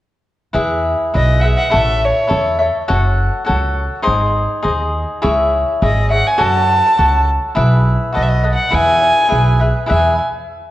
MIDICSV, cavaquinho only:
0, 0, Header, 1, 2, 480
1, 0, Start_track
1, 0, Key_signature, 4, "major"
1, 0, Tempo, 584795
1, 440, Time_signature, 2, 2, 24, 8
1, 8790, End_track
2, 0, Start_track
2, 0, Title_t, "Cavaquinho"
2, 0, Program_c, 0, 24
2, 439, Note_on_c, 0, 64, 66
2, 444, Note_on_c, 0, 71, 73
2, 448, Note_on_c, 0, 68, 66
2, 454, Note_on_c, 0, 76, 71
2, 922, Note_off_c, 0, 64, 0
2, 925, Note_off_c, 0, 71, 0
2, 927, Note_off_c, 0, 68, 0
2, 930, Note_off_c, 0, 76, 0
2, 932, Note_on_c, 0, 64, 45
2, 936, Note_on_c, 0, 68, 42
2, 936, Note_on_c, 0, 71, 46
2, 943, Note_on_c, 0, 76, 45
2, 1163, Note_off_c, 0, 76, 0
2, 1168, Note_off_c, 0, 71, 0
2, 1173, Note_off_c, 0, 68, 0
2, 1173, Note_on_c, 0, 76, 35
2, 1175, Note_off_c, 0, 64, 0
2, 1178, Note_on_c, 0, 71, 31
2, 1183, Note_on_c, 0, 68, 33
2, 1394, Note_on_c, 0, 64, 66
2, 1398, Note_off_c, 0, 76, 0
2, 1400, Note_off_c, 0, 68, 0
2, 1404, Note_on_c, 0, 69, 66
2, 1405, Note_off_c, 0, 71, 0
2, 1407, Note_on_c, 0, 76, 65
2, 1408, Note_on_c, 0, 73, 66
2, 1857, Note_off_c, 0, 64, 0
2, 1864, Note_off_c, 0, 69, 0
2, 1867, Note_on_c, 0, 64, 44
2, 1872, Note_off_c, 0, 73, 0
2, 1874, Note_off_c, 0, 76, 0
2, 1874, Note_on_c, 0, 69, 56
2, 1881, Note_on_c, 0, 73, 49
2, 1884, Note_on_c, 0, 76, 54
2, 2113, Note_off_c, 0, 76, 0
2, 2120, Note_off_c, 0, 64, 0
2, 2123, Note_off_c, 0, 73, 0
2, 2123, Note_on_c, 0, 76, 39
2, 2124, Note_off_c, 0, 69, 0
2, 2133, Note_on_c, 0, 73, 31
2, 2138, Note_on_c, 0, 69, 32
2, 2355, Note_off_c, 0, 69, 0
2, 2356, Note_off_c, 0, 73, 0
2, 2357, Note_off_c, 0, 76, 0
2, 2364, Note_on_c, 0, 66, 76
2, 2365, Note_on_c, 0, 69, 70
2, 2366, Note_on_c, 0, 73, 83
2, 2367, Note_on_c, 0, 78, 85
2, 2817, Note_off_c, 0, 66, 0
2, 2827, Note_on_c, 0, 66, 49
2, 2830, Note_off_c, 0, 69, 0
2, 2830, Note_off_c, 0, 73, 0
2, 2832, Note_off_c, 0, 78, 0
2, 2839, Note_on_c, 0, 69, 56
2, 2839, Note_on_c, 0, 73, 60
2, 2842, Note_on_c, 0, 78, 58
2, 3299, Note_off_c, 0, 66, 0
2, 3303, Note_on_c, 0, 63, 66
2, 3305, Note_off_c, 0, 73, 0
2, 3308, Note_off_c, 0, 69, 0
2, 3308, Note_on_c, 0, 72, 83
2, 3309, Note_off_c, 0, 78, 0
2, 3312, Note_on_c, 0, 68, 69
2, 3312, Note_on_c, 0, 75, 86
2, 3786, Note_off_c, 0, 68, 0
2, 3787, Note_off_c, 0, 63, 0
2, 3793, Note_off_c, 0, 72, 0
2, 3796, Note_on_c, 0, 63, 57
2, 3796, Note_on_c, 0, 68, 51
2, 3800, Note_off_c, 0, 75, 0
2, 3803, Note_on_c, 0, 72, 56
2, 3809, Note_on_c, 0, 75, 48
2, 4271, Note_off_c, 0, 68, 0
2, 4280, Note_off_c, 0, 63, 0
2, 4281, Note_on_c, 0, 68, 65
2, 4283, Note_on_c, 0, 64, 73
2, 4285, Note_off_c, 0, 75, 0
2, 4286, Note_off_c, 0, 72, 0
2, 4289, Note_on_c, 0, 73, 84
2, 4289, Note_on_c, 0, 76, 88
2, 4764, Note_off_c, 0, 64, 0
2, 4766, Note_off_c, 0, 68, 0
2, 4773, Note_off_c, 0, 76, 0
2, 4774, Note_off_c, 0, 73, 0
2, 4774, Note_on_c, 0, 64, 51
2, 4776, Note_on_c, 0, 68, 51
2, 4784, Note_on_c, 0, 73, 49
2, 4784, Note_on_c, 0, 76, 57
2, 4995, Note_off_c, 0, 76, 0
2, 5005, Note_on_c, 0, 76, 42
2, 5006, Note_off_c, 0, 73, 0
2, 5009, Note_off_c, 0, 68, 0
2, 5016, Note_on_c, 0, 73, 38
2, 5019, Note_on_c, 0, 68, 31
2, 5022, Note_off_c, 0, 64, 0
2, 5226, Note_off_c, 0, 73, 0
2, 5230, Note_off_c, 0, 68, 0
2, 5233, Note_on_c, 0, 66, 72
2, 5233, Note_on_c, 0, 69, 63
2, 5236, Note_off_c, 0, 76, 0
2, 5236, Note_on_c, 0, 73, 71
2, 5239, Note_on_c, 0, 78, 73
2, 5716, Note_off_c, 0, 66, 0
2, 5723, Note_off_c, 0, 69, 0
2, 5724, Note_off_c, 0, 73, 0
2, 5726, Note_off_c, 0, 78, 0
2, 5726, Note_on_c, 0, 66, 44
2, 5734, Note_on_c, 0, 69, 48
2, 5738, Note_on_c, 0, 73, 53
2, 5738, Note_on_c, 0, 78, 51
2, 6195, Note_off_c, 0, 66, 0
2, 6198, Note_on_c, 0, 64, 74
2, 6199, Note_off_c, 0, 69, 0
2, 6203, Note_on_c, 0, 68, 67
2, 6207, Note_off_c, 0, 73, 0
2, 6207, Note_off_c, 0, 78, 0
2, 6210, Note_on_c, 0, 71, 70
2, 6211, Note_on_c, 0, 76, 83
2, 6666, Note_off_c, 0, 64, 0
2, 6669, Note_on_c, 0, 66, 50
2, 6676, Note_off_c, 0, 68, 0
2, 6679, Note_off_c, 0, 71, 0
2, 6679, Note_on_c, 0, 69, 43
2, 6682, Note_on_c, 0, 71, 54
2, 6685, Note_off_c, 0, 76, 0
2, 6688, Note_on_c, 0, 75, 52
2, 6913, Note_off_c, 0, 75, 0
2, 6918, Note_off_c, 0, 71, 0
2, 6922, Note_off_c, 0, 69, 0
2, 6923, Note_off_c, 0, 66, 0
2, 6923, Note_on_c, 0, 75, 40
2, 6928, Note_on_c, 0, 71, 42
2, 6932, Note_on_c, 0, 69, 28
2, 7145, Note_off_c, 0, 71, 0
2, 7146, Note_on_c, 0, 64, 72
2, 7149, Note_off_c, 0, 75, 0
2, 7151, Note_off_c, 0, 69, 0
2, 7153, Note_on_c, 0, 76, 72
2, 7155, Note_on_c, 0, 68, 69
2, 7155, Note_on_c, 0, 71, 73
2, 7621, Note_off_c, 0, 64, 0
2, 7621, Note_off_c, 0, 68, 0
2, 7624, Note_on_c, 0, 64, 44
2, 7624, Note_on_c, 0, 68, 53
2, 7628, Note_off_c, 0, 71, 0
2, 7628, Note_off_c, 0, 76, 0
2, 7631, Note_on_c, 0, 71, 52
2, 7632, Note_on_c, 0, 76, 48
2, 7868, Note_off_c, 0, 76, 0
2, 7875, Note_off_c, 0, 71, 0
2, 7877, Note_on_c, 0, 76, 47
2, 7879, Note_off_c, 0, 68, 0
2, 7881, Note_off_c, 0, 64, 0
2, 7885, Note_on_c, 0, 71, 43
2, 7889, Note_on_c, 0, 68, 40
2, 8094, Note_off_c, 0, 68, 0
2, 8095, Note_on_c, 0, 64, 57
2, 8103, Note_off_c, 0, 71, 0
2, 8104, Note_on_c, 0, 68, 63
2, 8113, Note_off_c, 0, 76, 0
2, 8113, Note_on_c, 0, 71, 68
2, 8123, Note_on_c, 0, 76, 76
2, 8306, Note_off_c, 0, 64, 0
2, 8310, Note_off_c, 0, 68, 0
2, 8315, Note_off_c, 0, 71, 0
2, 8320, Note_off_c, 0, 76, 0
2, 8790, End_track
0, 0, End_of_file